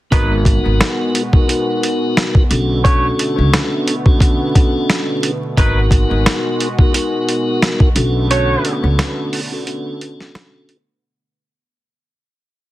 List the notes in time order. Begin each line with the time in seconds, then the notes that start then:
0.11 G#1 B2 F#3 G#3 B3 D#4 F#4 A#4 B4, kick, closed hi-hat
0.45 kick, closed hi-hat
0.66 G#1
0.81 snare, closed hi-hat
1.15 closed hi-hat
1.33 B3 D#4 F#4 A#4, kick
1.48 B3 D#4 F#4 A#4, closed hi-hat
1.83 closed hi-hat
2.17 snare, closed hi-hat
2.35 kick
2.50 B1 B2 D3 A3 B3 C#4 D4 F#4 A4, closed hi-hat
2.83 A3 C#4 D4 F#4 A4 C#5, kick, closed hi-hat
3.19 closed hi-hat
3.38 C#2
3.53 snare, closed hi-hat
3.87 closed hi-hat
4.06 C#4 D4 F#4 A4, kick
4.19 C#4 D4 F#4 A4, kick, closed hi-hat
4.55 kick, closed hi-hat
4.90 snare, closed hi-hat
5.23 closed hi-hat
5.57 G#1 F#3 G#3 B3 D#4 F#4 A#4 B4, kick, closed hi-hat
5.91 kick, closed hi-hat
6.11 G#1
6.26 snare, closed hi-hat
6.60 closed hi-hat
6.79 B3 D#4 F#4 A#4, kick
6.93 B3 D#4 F#4 A#4, closed hi-hat
7.29 closed hi-hat
7.62 snare, closed hi-hat
7.80 kick
7.95 B1 D3 A3 B3 C#4 D4 F#4 A4, closed hi-hat
8.29 A3 C#4 D4 F#4 A4 C#5, closed hi-hat
8.65 closed hi-hat
8.83 C#2
8.99 snare, closed hi-hat
9.33 open hi-hat
9.51 C#4 D4 F#4 A4
9.65 C#4 D4 F#4 A4, closed hi-hat
10.01 closed hi-hat
10.20 snare
10.35 snare, closed hi-hat
10.69 closed hi-hat